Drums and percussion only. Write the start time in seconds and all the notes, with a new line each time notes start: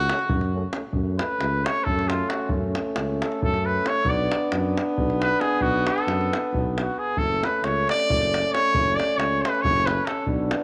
0.10 davul high
0.19 davul high
0.30 davul low
0.41 davul high
0.73 davul high
0.93 davul low
1.19 davul high
1.41 davul high
1.66 davul high
1.76 davul high
1.86 davul low
1.99 davul high
2.10 davul high
2.30 davul high
2.49 davul low
2.75 davul high
2.96 davul high
3.22 davul high
3.32 davul high
3.42 davul low
3.54 davul high
3.86 davul high
4.05 davul low
4.32 davul high
4.52 davul high
4.78 davul high
4.98 davul low
5.10 davul high
5.22 davul high
5.41 davul high
5.61 davul low
5.87 davul high
5.98 davul high
6.08 davul high
6.21 davul high
6.33 davul high
6.54 davul low
6.78 davul high
7.17 davul low
7.43 davul high
7.64 davul high
7.89 davul high
8.00 davul high
8.10 davul low
8.22 davul high
8.34 davul high
8.55 davul high
8.75 davul low
9.00 davul high
9.20 davul high
9.45 davul high
9.55 davul high
9.65 davul low
9.76 davul high
9.87 davul high
10.07 davul high
10.27 davul low
10.51 davul high